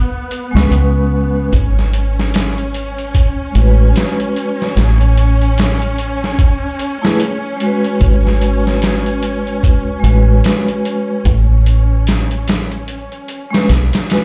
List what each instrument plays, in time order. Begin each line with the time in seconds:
Already playing: string section B3
0.31 closed hi-hat
0.51 fingered electric bass C#2, vibraphone G#3
0.56 vibraphone C#4, snare
0.60 vibraphone B4
0.71 fingered electric bass C#2, closed hi-hat
1.52 fingered electric bass G#1, string section C#4, kick, closed hi-hat
1.79 snare
1.93 closed hi-hat
2.19 snare
2.34 snare, closed hi-hat
2.58 closed hi-hat
2.74 closed hi-hat
2.98 closed hi-hat
3.14 kick, closed hi-hat
3.51 fingered electric bass A1, vibraphone G#3
3.55 vibraphone F#4, closed hi-hat
3.60 vibraphone B4
3.96 snare, closed hi-hat
4.20 closed hi-hat
4.36 closed hi-hat
4.62 snare
4.77 fingered electric bass A1, snare, closed hi-hat
5.01 closed hi-hat
5.18 closed hi-hat
5.41 closed hi-hat
5.58 snare, closed hi-hat
5.82 closed hi-hat
5.98 closed hi-hat
6.24 snare
6.39 kick, closed hi-hat
6.79 closed hi-hat
7.02 vibraphone A3 E4 G#4, snare
7.06 vibraphone B4
7.20 closed hi-hat
7.57 vibraphone G#3, closed hi-hat
7.62 vibraphone F#4
7.66 vibraphone B4
7.84 closed hi-hat
8.01 fingered electric bass G#1, kick, closed hi-hat
8.27 snare
8.41 closed hi-hat
8.67 snare
8.82 snare, closed hi-hat
9.06 closed hi-hat
9.23 closed hi-hat
9.47 closed hi-hat
9.63 kick, closed hi-hat
10.00 fingered electric bass A1, vibraphone G#3
10.04 vibraphone F#4, closed hi-hat
10.09 vibraphone B4
10.44 snare, closed hi-hat
10.68 closed hi-hat
10.85 closed hi-hat
11.25 fingered electric bass A1, kick, closed hi-hat
11.66 closed hi-hat
12.07 snare, closed hi-hat
12.31 closed hi-hat
12.48 snare, closed hi-hat
12.71 closed hi-hat
12.88 closed hi-hat
13.12 closed hi-hat
13.28 closed hi-hat
13.51 vibraphone G#3 C#4, snare
13.55 vibraphone B4
13.69 fingered electric bass B1, snare, closed hi-hat
13.93 snare, closed hi-hat
14.08 vibraphone G#3 F#4, snare, closed hi-hat
14.13 vibraphone B4